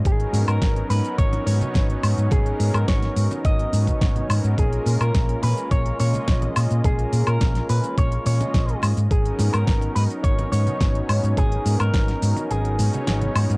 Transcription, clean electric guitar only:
X:1
M:4/4
L:1/16
Q:1/4=106
K:G#dor
V:1 name="Clean electric guitar"
G3 A3 B2 c2 c4 z2 | G3 A c4 d6 z2 | G3 A3 B2 c2 c4 z2 | G3 A3 B2 c2 c4 z2 |
G3 A3 B2 c2 c4 z2 | G3 A4- A G6 z2 |]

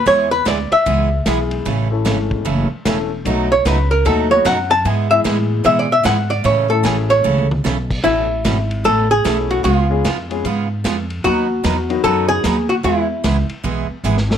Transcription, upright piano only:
X:1
M:4/4
L:1/8
Q:"Swing" 1/4=150
K:A
V:1 name="Upright piano"
z6 [E,G,B,EG]2 | z [E,A,CEA]3 z2 [E,A,CEA] z | [F,A,B,^DF] z4 [F,A,B,DF] z2 | z [E,G,B,EG]3 z4 |
z [E,A,CEA]3 z4 | z6 [A,B,CEA]2 | z [G,B,C^EG] z [G,B,CEG] z4 | z3 [^D,F,B,^DF]3 z2 |
z6 z [E,A,CEA] |]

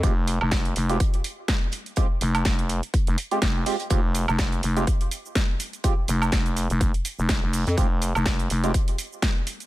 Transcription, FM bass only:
X:1
M:4/4
L:1/16
Q:"Swing 16ths" 1/4=124
K:Fm
V:1 name="FM bass" clef=bass
F,,,3 F,,,3 F,,,2 z8 | z2 F,,,2 F,,,3 z2 F,,, z2 F,,,2 z2 | F,,,3 F,,,3 F,,,2 z8 | z2 F,,,2 F,,,3 F,,,2 z2 F,,,2 F,,,2 F,, |
F,,,3 F,,,3 F,,,2 z8 |]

